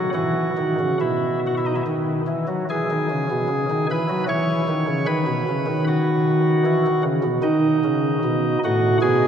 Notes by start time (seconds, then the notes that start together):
Already playing: F#3
0.14 E3 F#4
0.57 D#3
0.80 C#3
1.01 B2 E4
1.47 F#4
1.57 E4
1.66 D#4
1.75 E4
1.87 D#3
2.27 E3
2.48 F#3
2.70 E3 G#4
2.91 D#3
3.10 C#3
3.31 B2
3.48 C#3
3.70 D#3
3.91 E3 B4
4.09 F#3
4.28 E3 C#5
4.68 D#3
4.87 C#3
5.06 D#3 B4
5.27 B2
5.48 C#3
5.66 D#3
5.88 F#4
6.66 E3
6.86 D#3
7.03 C#3
7.23 B2
7.43 D#3 D#4
7.84 C#3
8.24 B2
8.65 A2 F#4
9.01 B2 G#4